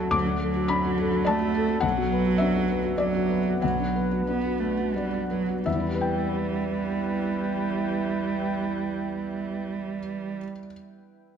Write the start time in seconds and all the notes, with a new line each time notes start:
Already playing: D2 F#3 D4 F#4 A4 D5 F#5 A5 B5 C#6
0.11 D2 F#3 D6
0.25 D4
0.40 F#3 A4
0.55 F#4
0.68 D4 B5
0.84 F#4
0.98 A4
1.11 F#4
1.25 A3 D5 A5
1.40 F#4
1.54 A4
1.68 F#4
1.80 B1 F#3 D4 B4 F#5
1.97 F#4
2.12 B4
2.26 F#4
2.38 D4 E5
2.56 F#4
2.70 B4
2.84 F#4
2.98 F#3 D5
3.15 F#4
3.30 B4
3.48 F#4
3.61 B1 F#3 F#5
3.80 D4
3.96 B4
4.11 F#4
4.26 B3 D4
4.45 F#4
4.60 A3 B4
4.79 F#4
4.94 G3 D5
5.13 F#4
5.30 F#3 B4
5.49 F#4
5.66 E2 G3 E4 B4 E5 G5
5.73 E3
5.80 E4
5.87 G4
5.94 B4
6.01 G5